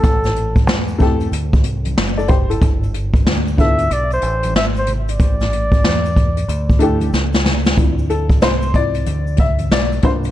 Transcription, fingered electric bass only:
X:1
M:4/4
L:1/8
Q:"Swing 16ths" 1/4=93
K:Dm
V:1 name="Fingered electric bass" clef=bass
A,,,2 E,,2 D,, C,, ^F,,,2 | G,,,2 D,,2 =B,,, A,,, ^G,,,2 | A,,,2 E,,2 D,,2 ^C,,2 | D,,2 C,,2 D,,2 =B,,, C,, |]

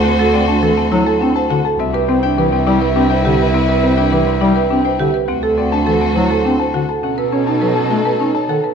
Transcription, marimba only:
X:1
M:3/4
L:1/16
Q:1/4=103
K:Clyd
V:1 name="Marimba"
C A C D A C E A D c F A | C B C D B C E B D c G B | C B C D B C E B D c G B | C A C D A C E A D c F A |
_D B D ^D B _D F B ^D _d A B |]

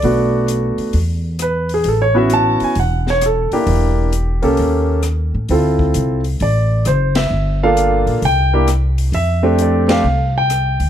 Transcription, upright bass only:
X:1
M:4/4
L:1/8
Q:"Swing" 1/4=132
K:F
V:1 name="Upright bass" clef=bass
=B,,,3 z E,,4 | A,,,3 z E,,,3 z | E,,,3 C,, _E,,3 A,, | D,,2 C,,2 A,,,2 _G,,,2 |
G,,,3 B,,, C,,4 | F,,4 C,,3 D,, |]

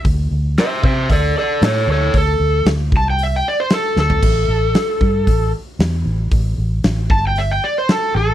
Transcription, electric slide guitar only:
X:1
M:4/4
L:1/16
Q:1/4=115
K:D
V:1 name="Electric slide guitar"
z4 [=ce]2 [ce]2 [Ad]2 [Ad]2 [A^c]2 [Ac]2 | A4 z2 a g e g d =c A2 A2- | A8- A2 z6 | z6 a g e g d =c A2 A2 |]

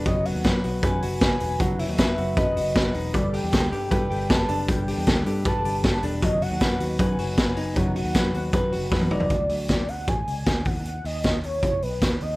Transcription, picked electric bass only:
X:1
M:4/4
L:1/16
Q:1/4=156
K:B
V:1 name="Picked electric bass" clef=bass
F,,,3 D,, F,,2 B,,,2 F,,2 F,,,4 E,,,2 | F,,,3 D,, F,,2 F,,,2 F,,2 F,,,4 E,,,2 | =G,,,3 E,, =D,,2 =G,,2 G,,2 G,,,4 F,,,2 | =G,,,3 E,, =D,,2 =G,,2 G,,2 G,,,4 E,,,2 |
F,,,3 D,, F,,2 D,,2 F,,2 F,,,6 | F,,,3 D,, F,,2 D,,2 F,,2 F,,,2 F,,2 F,,,2 | =D,,2 D,,6 =A,,,2 C,,2 D,,2 ^D,,2- | D,,2 D,,6 F,,,2 B,,,2 D,,2 D,,2 |]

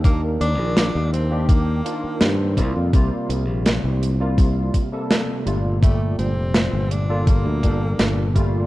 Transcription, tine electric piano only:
X:1
M:4/4
L:1/16
Q:1/4=83
K:Gm
V:1 name="Tine electric piano"
[E,B,DB]6- [E,B,DB] [E,B,DG]3 [E,B,DF]4 [C,G,B,F]2 | [C,G,B,F]6- [C,G,B,F] [C,G,B,F]4 [C,G,B,A]3 [B,,G,A,F]2 | [B,,G,A,G]6- [B,,G,A,G] [B,,G,FA]3 [B,,G,DA]4 [B,,G,A,F]2 |]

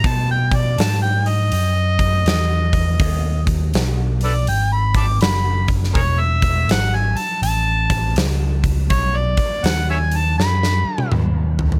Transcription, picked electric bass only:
X:1
M:4/4
L:1/8
Q:"Swing" 1/4=81
K:Bmix
V:1 name="Picked electric bass" clef=bass
B,,2 G,,2 F,,2 E,,2 | D,,2 B,,,2 G,,,2 F,,,2 | E,,,2 G,,, z A,,,2 C,,2 | B,,, z D,,2 F,, z D,,2 |]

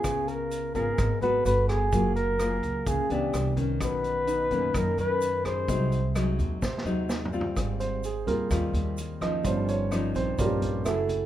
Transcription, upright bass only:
X:1
M:4/4
L:1/16
Q:1/4=128
K:Abmix
V:1 name="Upright bass" clef=bass
D,,6 A,,,2 A,,, z A,,,2 =G,,,4 | G,,,6 D,,2 D,, z D,,2 C,,4 | _C,,6 G,,2 G,, z G,,6 | C,,6 E,,2 E,, z E,,6 |
[K:Ab] A,,,6 E,,2 E,,2 E,,6 | G,,,6 B,,,2 B,,,2 B,,,2 _G,,,4 |]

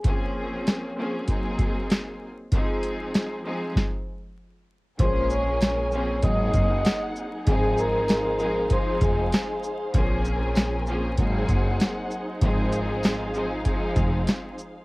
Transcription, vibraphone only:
X:1
M:4/4
L:1/16
Q:"Swing 16ths" 1/4=97
K:Bbm
V:1 name="Vibraphone"
z16 | z16 | [cc']2 [dd']6 [ee']2 e3 z3 | [Aa]2 [Bb]6 [cc']2 [Aa]6 |
z16 | z16 |]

